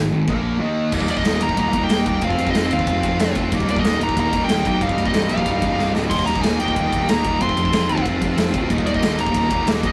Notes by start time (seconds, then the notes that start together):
Already playing: G#1
0.12 G#1 G#2 D#3
0.27 A#1 A#2 F3 A#3, kick, china
0.59 D#3 A#3 D#4
0.92 D#1 D#2 A#2 A#3 D#4, kick, crash
0.99 D#2 A#2 A#3 D#4, kick
1.07 D#1 D#2 A#2 A#3 D#4 D5, ride
1.15 D#2 A#2 A#3 D#4 D#5, kick
1.22 D#1 D#2 A#2 A#3 D#4, snare, ride
1.30 D#2 A#2 A#3 D#4
1.37 D#2 A#2 A#3 D#4, ride
1.42 D#1 D#2 A#3 A#5
1.46 A#2 D#4, kick
1.53 D#2 A#2 A#3 D#4
1.57 D#1 A#2 A#3 A#5, kick, ride
1.61 D#2 D#4
1.68 D#2 A#2 A#3 D#4
1.73 D#1 D#2 A#2 A#3, kick, ride
1.78 D#4
1.84 D#2 A#2 A#3 D#4 G5
1.89 D#1 D#2 A#2 A#3 D#4, snare, ride
1.99 D#2 A#2 A#3 D#4
2.06 D#1 D#2 A#2 A#3 D#4 G5, kick, ride
2.14 D#2 A#2 A#3 D#4
2.21 F1 F2 C3 C4 F4 F5, kick, ride
2.30 F2 C3 C4 F4, kick
2.37 F1 F2 C3 C4 F4, ride
2.45 F2 C3 C4 F4, kick
2.50 F2 C3 C4 F4 D#5
2.55 F1, snare, ride
2.60 F2 C3 C4 F4
2.68 F2 C3 C4 F4, ride
2.72 D#2 C3 F4 F5
2.77 F2 C4, kick
2.83 F1 F2 C3 C4 F4, kick, ride
2.91 F2 C3 C4 F4
2.98 F2 C3 C4 F4
3.03 F1 F2 C3 C4 F4, kick, ride
3.13 F2 C3 C4 F4
3.19 F1 F2 C3 C4 F4, snare, ride
3.30 F2 C3 C4 F4
3.35 F1 F2 C3 C4 F4, kick, ride
3.44 F2 C3 C4 F4
3.52 D#1 D#2 A#2 A#3 D#4, kick, ride
3.60 D#2 A#2 A#3 D#4, kick
3.67 D#1 D#2 A#2 A#3 D#4 D5, ride
3.75 D#2 A#2 A#3 D#4, kick
3.79 D#2 A#3 D#5
3.84 D#1 A#2 D#4, snare, ride
3.90 D#2 A#2 A#3 D#4
3.98 D#1 D#2 A#2 A#3 D#4, ride
4.03 D#2 A#2 A#3 D#4 A#5
4.09 kick
4.13 D#2 A#2 A#3 D#4, kick, ride
4.17 D#1 D#2 A#2 D#4 A#5
4.22 A#3
4.28 D#2 A#2 A#3 D#4
4.33 D#1 D#2 A#2 A#3 D#4, kick, ride
4.43 D#2 A#2 A#3 D#4 G5
4.48 D#1 D#2 A#3 D#4, snare, ride
4.52 A#2
4.59 D#2 A#2 A#3 D#4
4.65 B1 D#2 A#2 A#3 D#4 G5, kick, ride
4.73 D#2 A#2 A#3 D#4
4.81 C1 C2 G2 G3 D#4 F5, kick, ride
4.89 C2 G2 G3 D#4, kick
4.97 C1 C2 G2 G3 D#4, ride
5.05 C2 G2 G3 D#4 D#5, kick
5.11 C1 C2 G2 G3 D#4, snare, ride
5.20 C2 G2 G3 D#4
5.27 A#1 C2 G2 G3 D#4 F5, ride
5.34 C2 G2 G3 D#4, kick
5.42 C2 G2 G3 D#4, kick, ride
5.46 C1 D#4
5.51 C2 G2 G3
5.57 C2 G2 G3 D#4
5.62 C1 D#4, kick, ride
5.66 C2 G2 G3
5.72 C2 G2 G3 D#4
5.79 C1 C2 G2 G3 D#4, snare
5.88 C2 G2 G3 D#4
5.95 D1 C2 G2 G3 D#4, snare
6.02 C2 G2 G3 D#4
6.10 D#1 D#2 A#2 A#3 D#4 C6, kick, ride, crash
6.18 D#2 A#2 A#3 D#4, kick
6.26 D#1 D#2 A#2 A#3 D#4 A#5, ride
6.34 D#2 A#2 A#3 D#4, kick
6.41 D#1 D#2 A#2 A#3 D#4 G#5, snare, ride
6.48 D#2 A#2 A#3 D#4
6.56 D#2 A#2 A#3 D#4 G5, ride
6.61 D#1 D#2 D#4
6.65 A#2 A#3, kick
6.72 D#2 A#2 A#3 D#4
6.76 D#1 D#2 A#2 A#3 D#4, kick, ride
6.87 D#2 A#2 A#3 D#4
6.92 D#1 D#2 A#2 A#3 D#4, kick, ride
7.02 D#2 A#2 A#3 D#4
7.08 D#1 D#2 A#2 A#3 D#4 A#5, snare, ride
7.17 D#2 A#2 A#3 D#4
7.24 D#1 D#2 A#2 A#3 D#4, kick, ride
7.33 D#2 A#2 A#3 D#4
7.40 F1 F2 C3 C4 F4 C6, kick, ride
7.47 F2 C3 C4 F4, kick
7.54 F1 F2 C3 C4 F4, ride
7.63 F2 C3 C4 F4, kick
7.71 F1 F2 C3 C4 F4, snare, ride
7.78 F2 C3 C4 F4
7.86 F2 C3 C4 F4, ride
7.90 D#2 C4
7.94 F2 C3 F4, kick
8.01 F2 C3 C4 F4
8.05 F1 F2 C4 F4, kick, ride
8.10 C3
8.16 F2 C3 C4 F4
8.22 F1 F2 C3 C4 F4, kick, ride
8.32 F2 C3 C4 F4
8.37 F1 F2 C3 C4 F4, snare, ride
8.47 F2 C3 C4 F4
8.54 D1 F2 C3 C4 F4, kick, ride
8.62 F2 C3 C4 F4
8.70 D#1 D#2 A#2 A#3 D#4, kick, ride
8.77 D#2 A#2 A#3 D#4, kick
8.86 D#1 D#2 A#2 A#3 D#4 D5, ride
8.93 D#2 A#2 A#3 D#4 D#5, kick
9.01 D#1 D#2 A#2 A#3 D#4, snare, ride
9.09 D#2 A#2 A#3 D#4
9.16 D#1 D#2 A#2 A#3 D#4, ride
9.20 D#2 A#2 A#3 D#4 A#5
9.27 kick
9.31 D#2 A#2 A#3 D#4, kick, ride
9.35 D#1 A#3 D#4 A#5
9.39 D#2 A#2
9.46 D#2 A#2 A#3 D#4
9.50 D#1 D#2 D#4, kick, ride
9.55 A#2 A#3
9.62 D#2 A#2 A#3 D#4
9.67 D#1 D#2 A#2 A#3 D#4, snare, ride
9.75 D#2 A#2 A#3 D#4
9.83 A#1 D#2 A#2 A#3 D#4 D#5, kick, ride